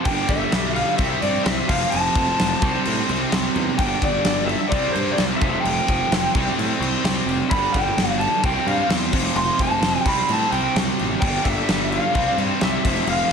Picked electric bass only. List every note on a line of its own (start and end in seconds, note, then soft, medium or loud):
0.06 0.20 G1 medium
0.28 0.43 G1 loud
0.53 0.82 B1 medium
0.99 1.13 C2 medium
1.23 1.37 G2 medium
1.46 1.60 C2 medium
1.69 1.83 F1 loud
1.94 2.08 F1 loud
2.16 2.30 F1 medium
2.40 2.54 F1 medium
2.62 2.77 C2 medium
2.87 3.01 A2 loud
3.09 3.24 C2 loud
3.32 3.47 C2 medium
3.56 3.70 E2 loud
3.79 3.93 G1 loud
4.02 4.17 G1 medium
4.26 4.55 G1 loud
4.72 4.86 C2 medium
4.95 5.10 G2 loud
5.18 5.33 C2 medium
5.42 5.56 F1 loud
5.64 5.79 F1 medium
5.89 6.03 F1 medium
6.12 6.26 F1 loud
6.35 6.49 C2 medium
6.58 6.72 A2 medium
6.80 6.95 C2 medium
7.04 7.18 C2 medium
7.26 7.41 F1 medium
7.52 7.66 G1 loud
7.75 7.89 G1 medium
7.97 8.26 G1 medium
8.44 8.58 C2 medium
8.67 8.81 G2 medium
8.89 9.15 E2 medium
9.13 9.28 F1 medium
9.36 9.50 F1 medium
9.59 9.74 F1 medium
9.81 9.96 F1 medium
10.05 10.20 C2 medium
10.29 10.43 A2 medium
10.52 10.67 C2 medium
10.75 10.90 C2 medium
11.01 11.14 A1 medium
11.22 11.36 G1 loud
11.45 11.60 G1 loud
11.70 11.98 G1 medium
12.15 12.29 C2 loud
12.37 12.52 G2 loud
12.62 12.76 C2 loud
12.86 12.99 F1 loud
13.07 13.21 F1 loud